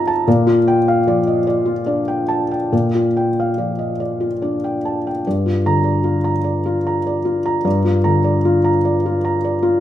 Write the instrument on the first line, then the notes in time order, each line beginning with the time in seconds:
felt piano
Already playing: C3 C4 D#4 F4 D#5 F5 A5 A#5
0.07 A5
0.28 A#2 D5
0.47 F4
0.68 G5
0.88 F5
1.07 F3 D5
1.27 D#5
1.47 D5
1.66 F4
1.86 D4 D5
2.08 G5
2.28 A5
2.51 G5
2.72 A#2 D5
2.95 F4
3.17 G5
3.40 F5
3.58 F3 D5
3.79 D#5
4.00 D5
4.20 F4
4.42 D4 D5
4.64 G5
4.85 A5
5.07 G5
5.27 G2 D5
5.46 F4
5.66 D3 A#5
5.84 D5
6.04 F4
6.24 A#5
6.44 D5
6.66 F4
6.87 A#5
7.07 D5
7.25 F4
7.46 A#5
7.65 G2 D5
7.85 F4
8.04 D3 A#5
8.24 D5
8.45 F4
8.64 A#5
8.85 D5
9.06 F4
9.25 A#5
9.45 D5
9.63 F4